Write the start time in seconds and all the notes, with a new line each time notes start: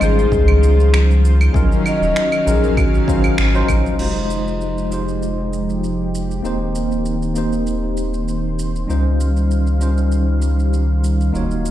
Already playing: D#3 F3 G3 F4 C5
0.00 G#1 G#3 C#4 D#4 F4 G#4 C5, claves, shaker
0.19 shaker
0.32 C#2, kick, shaker
0.48 claves
0.63 shaker
0.80 shaker
0.94 finger snap, claves, shaker
1.11 shaker
1.25 shaker
1.41 claves, shaker
1.52 D#3 F#3 C#4 D#4 F4 A#4 F5, kick, shaker
1.72 shaker
1.86 D#5, claves, shaker
2.01 D#1, shaker
2.16 finger snap, shaker
2.32 claves, shaker
2.45 A#1 F#3 C#4 D#4 F4 G#4 A#4, shaker
2.63 A#4, shaker
2.76 F#4, kick, claves, shaker
2.94 shaker
3.07 F#3 C#4 D#4 C5 F5, kick, shaker
3.24 claves, shaker
3.38 G#1, finger snap, shaker
3.54 F#3 C#4 D#4 F4 C5, shaker
3.68 A#1, kick, claves, shaker
3.86 shaker
3.98 F1 F3 G#3 D#4 F4 G4 C5, crash, shaker
4.30 shaker
4.48 shaker
4.61 shaker
4.78 shaker
4.90 G#3 D#4 F4 G4 C5, shaker
5.08 shaker
5.22 shaker
5.53 shaker
5.70 shaker
5.84 shaker
6.15 shaker
6.31 shaker
6.43 D#1 D#3 A#3 C4 D#4 G4 C5, shaker
6.75 shaker
6.92 shaker
7.05 shaker
7.22 shaker
7.34 A#3 C4 D#4 G4 C5, shaker
7.52 shaker
7.67 shaker
7.97 shaker
8.14 shaker
8.28 shaker
8.59 shaker
8.76 shaker
8.87 C#2 D#3 G3 C#4 D#4 F4 C5 F5, shaker
9.20 shaker
9.37 shaker
9.51 shaker
9.67 shaker
9.79 G3 C#4 D#4 F4 C5, shaker
9.97 shaker
10.12 shaker
10.42 shaker
10.59 shaker
10.73 shaker
11.04 shaker
11.21 shaker
11.33 D#1 F#3 A#3 C#4 D#4 F4 F#4 C#5, shaker
11.51 shaker
11.66 shaker